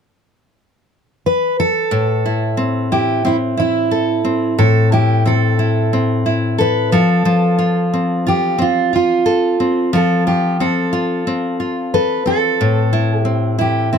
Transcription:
1.26 B4
1.60 A4
1.91 A2
2.26 E4
2.57 C4
2.92 E4 G4
3.25 C4 E4
3.57 E4
3.91 A4
4.25 C4
4.58 A2 A4
4.92 E4 G4
5.26 C4 A4
5.59 E4
5.93 C4
6.26 E4
6.58 A4 B4
6.92 F3 A4
7.25 F3
7.59 F4
7.94 C4
8.27 F4 G4
8.58 C4 F4
8.93 F4
9.26 A4
9.60 C4
9.93 F3 A4
10.27 F4 G4
10.60 C4 A4
10.93 F4
11.27 C4
11.60 F4
11.94 A4 B4
12.26 C4 A4
12.61 A2
12.93 E4
13.20 G4
13.25 C4
13.59 E4 G4
13.93 C4 E4

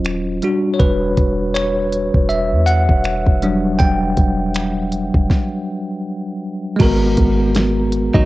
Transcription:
Already playing: D#1 F#3 C#4 F4 C5
0.05 finger snap, closed hi-hat
0.42 G3 D4 F#4, closed hi-hat
0.74 C#5
0.79 E1 B4, kick, closed hi-hat
1.17 E1, kick, closed hi-hat
1.54 C#5, finger snap, closed hi-hat
1.92 closed hi-hat
2.14 E1, kick
2.29 E5, closed hi-hat
2.52 E2
2.66 F#5, closed hi-hat
2.89 E1, kick
3.04 finger snap, closed hi-hat
3.27 E1, kick
3.42 F#3 G3 D4, closed hi-hat
3.79 E1 G5, kick, closed hi-hat
4.17 E1, kick, closed hi-hat
4.55 finger snap, closed hi-hat
4.92 closed hi-hat
5.14 E1, kick
5.30 kick, snare
6.76 G#1 G#3 F#4, kick, closed hi-hat, crash
6.81 A#4 A#5
6.85 B3
7.17 G#1, kick, closed hi-hat
7.55 snare, closed hi-hat
7.92 closed hi-hat
8.14 G#1 F#3 D#4, kick

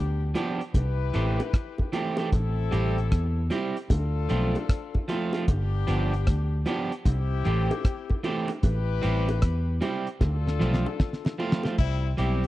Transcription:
Already playing: D2 B3 D4 G4
0.34 F3 B3 D4 G4, closed hi-hat, low bongo
0.61 closed hi-hat
0.74 C2 E4 G4 B4, kick, closed hi-hat, high bongo
1.14 A1 E3 A3 C4 G4, closed hi-hat
1.40 closed hi-hat, high bongo
1.54 kick, cross-stick, closed hi-hat
1.78 kick, high bongo
1.92 E3 A3 C4 G4, closed hi-hat, low bongo
2.17 E3 A3 C4 G4, closed hi-hat, high bongo
2.32 A1 C4 E4 A4, kick, closed hi-hat, high bongo
2.71 A1 G3 C4 E4 G4, closed hi-hat
2.98 closed hi-hat
3.12 E2, kick, cross-stick, closed hi-hat
3.50 G3 C4 E4 G4, closed hi-hat, low bongo
3.77 closed hi-hat
3.90 D2 D4 F4 A4, kick, closed hi-hat, high bongo
4.29 B1 F3 A3 C4 F4, closed hi-hat
4.55 closed hi-hat, high bongo
4.69 kick, cross-stick, closed hi-hat
4.94 kick, high bongo
5.08 F3 A3 C4 F4, closed hi-hat, low bongo
5.33 F3 A3 C4 F4, closed hi-hat, high bongo
5.48 G1 B3 D4 G4, kick, closed hi-hat, high bongo
5.87 G1 F3 B3 D4 G4, closed hi-hat
6.14 closed hi-hat
6.27 D2, kick, cross-stick, closed hi-hat
6.66 F3 B3 D4 G4, closed hi-hat, low bongo
6.92 closed hi-hat
7.05 C2 C4 E4 G4, kick, closed hi-hat, high bongo
7.45 A1 E3 A3 C4 G4, closed hi-hat
7.71 closed hi-hat, high bongo
7.85 kick, cross-stick, closed hi-hat
8.10 kick, high bongo
8.23 E3 A3 C4 G4, closed hi-hat, low bongo
8.48 closed hi-hat, high bongo
8.63 A1 E4 G4 B4, kick, closed hi-hat, high bongo
9.02 A1 G3 C4 E4 G4, closed hi-hat
9.28 closed hi-hat, high bongo
9.42 E2, kick, cross-stick, closed hi-hat
9.81 G3 C4 E4 G4, closed hi-hat, high bongo, low bongo
10.07 closed hi-hat
10.21 D2 D4 F4 A4, kick, snare, high bongo
10.47 snare
10.59 B1 F3 A3 C4 F4, snare
10.74 snare
10.86 high bongo
11.00 kick, snare
11.13 snare
11.25 snare, high bongo
11.38 F3 A3 C4 F4, low bongo
11.52 snare
11.63 F3 A3 C4 F4, snare, high bongo
11.78 C2 G3 C4 E4, kick, closed hi-hat
12.17 B1 G3 C4 E4 G4, closed hi-hat
12.44 closed hi-hat

